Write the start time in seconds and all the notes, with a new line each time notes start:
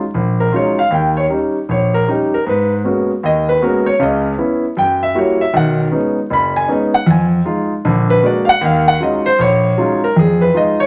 0.14 A#1
0.40 A#4
0.52 F#3 G#3 C#4 D#4 F4 C#5
0.79 F5
0.91 D#2 G5
1.17 C#5
1.29 G3 C#4 D#4
1.69 A#1 C#5
1.94 A#4
2.08 G3 C#4 D#4 G4
2.34 A#4
2.45 G#2 A#4
2.49 B4
2.84 G#3 A#3 B3 C#4 F#4
3.23 D#2 D#5
3.49 B4
3.62 G#3 A#3 B3 C#4 F#4 A#4
3.86 C#5
3.99 C#2 C#3 D#5
4.38 B3 C#4 E4
4.77 F#2 G5
5.03 E5
5.15 G3 A#3 E4 F#4 C#5
5.41 E5
5.53 B1 D#3 F#5
5.92 G#3 B3 C#4 D#4
6.30 F#1 B5
6.56 G#5
6.68 G#3 B3 C#4 D#4 D5
6.72 D#5
6.94 F#5
7.06 F2
7.11 G#5
7.45 G#3 D#4 F4
7.85 A#1 D3
8.10 B4
8.23 G#3 A#3 D4 F#4 D5
8.45 F5
8.49 F#5
8.61 D#2 D#3 F5
8.88 F#5
9.00 F#3 G#3 C#4 D#4 F4 D#5
9.26 C5
9.39 A#1 C#5
9.77 F#3 G#3 C#4 D#4 F4
10.04 A#4
10.16 F2 G#4
10.41 B4
10.54 G#3 D#4 F4 D#5
10.80 C#5